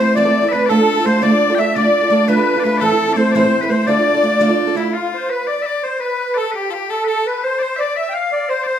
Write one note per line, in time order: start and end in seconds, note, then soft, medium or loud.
0.00 0.16 A3 medium
0.00 0.16 C4 medium
0.00 0.17 E4 medium
0.00 0.17 A4 medium
0.00 0.13 C5 loud
0.00 0.16 C5 medium
0.15 0.25 A2 medium
0.15 0.26 E3 medium
0.15 0.26 A3 medium
0.15 0.26 C4 medium
0.15 0.25 E4 medium
0.15 0.24 A4 medium
0.15 0.52 D5 loud
0.15 0.48 D5 medium
0.25 0.44 A3 soft
0.25 0.44 C4 soft
0.25 0.43 E4 medium
0.25 0.42 A4 medium
0.43 0.51 A3 soft
0.43 0.52 C4 soft
0.43 0.52 E4 medium
0.43 0.52 A4 medium
0.48 0.67 B4 loud
0.48 0.53 E5 medium
0.53 0.69 A3 medium
0.53 0.69 C4 medium
0.53 0.70 E4 medium
0.53 0.70 A4 medium
0.53 0.66 B4 medium
0.66 0.78 D3 medium
0.66 1.06 A4 loud
0.66 1.06 A4 medium
0.66 0.70 D5 medium
0.70 0.79 A3 medium
0.70 0.79 D4 medium
0.70 0.79 F4 medium
0.70 0.78 A4 medium
0.80 0.98 D4 soft
0.80 0.97 F4 soft
0.80 0.96 A4 medium
0.97 1.05 D4 soft
0.97 1.06 F4 soft
0.97 1.05 A4 medium
1.05 1.21 A3 medium
1.05 1.22 D4 medium
1.05 1.22 F4 medium
1.05 1.22 A4 medium
1.05 1.23 C5 loud
1.05 1.23 C5 medium
1.22 1.31 D3 medium
1.22 1.32 A3 medium
1.22 1.32 D4 medium
1.22 1.31 F4 medium
1.22 1.30 A4 medium
1.22 1.59 D5 loud
1.22 1.55 D5 loud
1.31 1.50 D4 soft
1.31 1.50 F4 soft
1.31 1.49 A4 medium
1.50 1.58 D4 medium
1.50 1.59 F4 medium
1.50 1.58 A4 medium
1.55 1.74 A3 medium
1.55 1.75 D4 medium
1.55 1.74 E5 loud
1.55 1.59 G5 medium
1.59 1.75 F4 medium
1.59 1.75 A4 medium
1.59 1.75 E5 medium
1.75 1.85 D3 medium
1.75 1.85 A3 medium
1.75 1.85 D4 medium
1.75 1.84 F4 medium
1.75 1.83 A4 medium
1.75 2.28 D5 medium
1.75 2.25 D5 loud
1.84 2.03 D4 soft
1.84 2.02 F4 soft
1.84 2.00 A4 medium
2.01 2.09 D4 soft
2.01 2.10 F4 medium
2.01 2.11 A4 medium
2.10 2.27 A3 medium
2.10 2.27 D4 medium
2.10 2.28 F4 medium
2.10 2.28 A4 medium
2.28 2.37 D3 medium
2.28 2.38 A3 medium
2.28 2.38 D4 medium
2.28 2.37 F4 medium
2.28 2.36 A4 medium
2.28 2.60 B4 medium
2.28 2.62 B4 loud
2.37 2.56 D4 soft
2.37 2.55 F4 soft
2.37 2.54 A4 medium
2.55 2.64 D4 medium
2.55 2.64 F4 soft
2.55 2.64 A4 medium
2.60 2.64 D5 medium
2.64 2.80 A3 medium
2.64 2.82 D4 medium
2.64 2.82 F4 medium
2.64 2.81 A4 medium
2.64 2.78 B4 medium
2.64 2.83 B4 loud
2.78 2.91 A2 medium
2.78 2.91 E3 medium
2.78 3.13 A4 medium
2.78 2.81 D5 medium
2.82 2.91 A3 medium
2.82 2.91 C4 medium
2.82 2.91 E4 medium
2.82 2.90 A4 medium
2.82 3.20 A4 loud
2.91 3.09 A3 soft
2.91 3.08 C4 soft
2.91 3.07 E4 soft
2.91 3.07 A4 medium
3.08 3.15 A3 soft
3.08 3.16 C4 soft
3.08 3.16 E4 medium
3.08 3.17 A4 medium
3.13 3.34 A3 medium
3.13 3.34 C4 medium
3.13 3.32 C5 medium
3.13 3.17 D5 medium
3.18 3.35 E4 medium
3.18 3.35 A4 medium
3.18 3.34 C5 loud
3.32 3.44 A2 medium
3.32 3.44 E3 medium
3.32 3.44 A3 medium
3.32 3.44 C4 medium
3.32 3.61 C5 medium
3.32 3.63 C5 loud
3.32 3.35 D5 medium
3.36 3.43 E4 medium
3.36 3.42 A4 medium
3.44 3.63 A3 soft
3.44 3.63 C4 soft
3.44 3.62 E4 medium
3.44 3.61 A4 medium
3.61 3.68 A3 soft
3.61 3.69 C4 soft
3.61 3.70 E4 medium
3.61 3.71 A4 medium
3.61 3.70 B4 medium
3.61 3.71 B4 medium
3.69 3.86 A3 medium
3.69 3.88 C4 medium
3.69 3.88 E4 medium
3.69 3.88 A4 medium
3.69 3.87 C5 medium
3.69 3.88 C5 medium
3.87 3.97 D3 medium
3.87 3.97 A3 medium
3.87 3.97 D4 medium
3.87 3.97 F4 medium
3.87 3.96 A4 medium
3.87 4.76 D5 medium
3.87 4.56 D5 loud
3.97 4.15 D4 soft
3.97 4.15 F4 soft
3.97 4.13 A4 medium
4.14 4.23 D4 soft
4.14 4.23 F4 soft
4.14 4.23 A4 medium
4.23 4.39 A3 medium
4.23 4.40 D4 medium
4.23 4.40 F4 medium
4.23 4.41 A4 medium
4.40 4.50 D3 medium
4.40 4.50 A3 medium
4.40 4.50 D4 loud
4.40 4.48 F4 medium
4.40 4.47 A4 medium
4.49 4.68 D4 soft
4.49 4.67 F4 medium
4.49 4.66 A4 medium
4.67 4.75 D4 medium
4.67 4.76 F4 medium
4.67 4.76 A4 medium
4.75 4.93 A3 medium
4.75 4.94 D4 medium
4.75 4.94 E4 medium
4.75 4.95 E4 medium
4.75 4.94 F4 medium
4.75 4.94 A4 medium
4.93 5.13 F4 loud
4.93 5.30 F4 medium
5.13 5.31 C5 medium
5.30 5.48 B4 loud
5.30 5.47 B4 medium
5.47 5.62 D5 medium
5.47 5.85 D5 medium
5.62 5.84 D5 medium
5.62 5.66 E5 medium
5.83 5.99 C5 medium
5.83 6.01 C5 medium
6.00 6.38 B4 medium
6.00 6.34 B4 medium
6.34 6.53 A4 loud
6.34 6.51 A4 medium
6.34 6.38 D5 medium
6.51 6.69 G4 medium
6.51 6.70 G4 medium
6.51 6.55 B4 medium
6.70 6.74 F4 medium
6.70 6.90 G4 medium
6.70 6.74 A4 medium
6.90 7.04 A4 medium
6.90 7.06 A4 medium
7.04 7.25 A4 loud
7.04 7.27 A4 medium
7.04 7.08 B4 medium
7.27 7.44 B4 medium
7.44 7.59 C5 loud
7.44 7.59 C5 medium
7.59 7.81 C5 loud
7.59 7.76 C5 medium
7.59 7.62 D5 medium
7.76 7.97 D5 medium
7.76 7.81 E5 medium
7.81 7.97 D5 medium
7.95 8.09 E5 loud
7.95 8.14 E5 medium
8.09 8.31 F5 loud
8.09 8.14 G5 medium
8.14 8.49 F5 medium
8.32 8.51 D5 loud
8.49 8.65 C5 loud
8.49 8.63 C5 medium
8.63 8.79 C5 loud
8.63 8.79 C5 medium
8.63 8.67 D5 medium